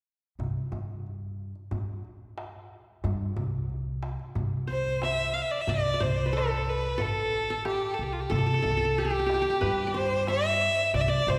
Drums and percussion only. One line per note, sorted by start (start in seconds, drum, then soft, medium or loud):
0.40 darbuka dum medium
0.72 darbuka dum medium
1.06 darbuka ka soft
1.55 darbuka ka soft
1.71 darbuka dum medium
2.04 darbuka ka soft
2.38 darbuka tek medium
3.04 darbuka dum medium
3.37 darbuka dum medium
3.69 darbuka ka soft
4.03 darbuka tek medium
4.19 darbuka ka soft
4.35 darbuka dum medium
5.02 darbuka tek medium
5.18 darbuka ka soft
5.67 darbuka dum medium
5.84 darbuka ka soft
6.01 darbuka dum medium
6.18 darbuka ka soft
6.34 darbuka ka soft
6.83 darbuka ka soft
6.99 darbuka dum medium
7.65 darbuka tek medium
7.82 darbuka ka soft
8.31 darbuka dum medium
8.47 darbuka ka soft
8.63 darbuka dum medium
8.80 darbuka ka soft
8.97 darbuka ka soft
9.29 darbuka tek medium
9.45 darbuka ka soft
9.61 darbuka dum medium
10.27 darbuka tek medium
10.45 darbuka ka soft
10.94 darbuka dum medium
11.12 darbuka ka soft
11.28 darbuka dum medium